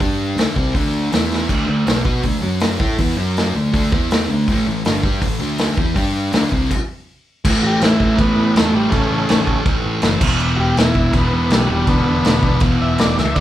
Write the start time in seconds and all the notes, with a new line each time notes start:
0.00 G2 G3 D4 G4, kick, open hi-hat
0.35 D2 D3 A3 D4, snare, open hi-hat
0.56 C2 C3 G3 C4, kick
0.74 D2 D3 A3 D4, kick, open hi-hat
1.11 E2 E3 B3 E4, snare, open hi-hat
1.33 snare
1.47 D2 D3 A3 D4, kick, crash
1.66 D2 D3 A3
1.86 B1 B2 F#3 B3, snare, open hi-hat
2.04 B2 B3 F#4 B4, kick
2.23 D2 D3 A3, kick, open hi-hat
2.42 F#2 F#3 C#4 F#4
2.60 snare, open hi-hat
2.79 A2 A3 E4 A4, kick
2.98 E2 E3 B3 E4, kick, open hi-hat
3.17 F#2 F#3 C#4 F#4
3.37 snare, open hi-hat
3.54 D2 D3 A3
3.72 D2 D3 A3 D4, kick, open hi-hat
3.92 E2 E3 B3 E4, kick
4.11 snare, open hi-hat
4.29 D2 D3 A3
4.48 A1 A2 E3 A3, kick, open hi-hat
4.67 A1 A2 E3
4.85 G1 G2 D3 G3, snare, open hi-hat
5.03 G2 G3 D4 G4, kick
5.22 A1 A2 E3, kick, open hi-hat
5.40 D2 D3 A3 D4
5.58 snare, open hi-hat
5.77 E2 E3 B3 E4, kick
5.95 G2 G3 D4 G4, kick, open hi-hat
6.32 D2 D3 A3 D4, snare, open hi-hat
6.51 C2 C3 G3 C4, kick
6.71 kick, crash
7.45 A1 A2 E3, kick, crash
7.49 A3
7.63 A1 F#4 G4
7.81 A1, snare, crash
7.85 E4
8.00 A1, kick
8.16 A1 A#3, kick, crash
8.20 B3
8.36 A2
8.55 E2 A3, snare, crash
8.71 A1 F#3 G3
8.90 A1 A2 C#3 E3 A3, kick, crash
9.11 A1
9.29 A1, snare, crash
9.47 A1, kick
9.66 A1, kick, crash
9.85 A1
10.02 F#1, snare, crash
10.21 E1 E2 B2, kick, crash
10.25 E3
10.39 E1, crash
10.56 E1 F#4 G4
10.76 E1, snare, crash
10.81 E4
10.95 E1, kick
11.12 E1 A#3, kick, crash
11.17 B3
11.33 E2
11.50 B1 G3, snare, crash
11.67 E1 E2 B2 F#3
11.71 E3 G3
11.87 E1 D3 B3, kick, crash
12.07 E1
12.24 E1, snare, crash
12.42 E1, kick
12.60 E1, kick, crash
12.82 E1 E5
12.98 E1 D5, snare, crash
13.18 C#2 E5, snare
13.34 D2 D3 D5, kick, crash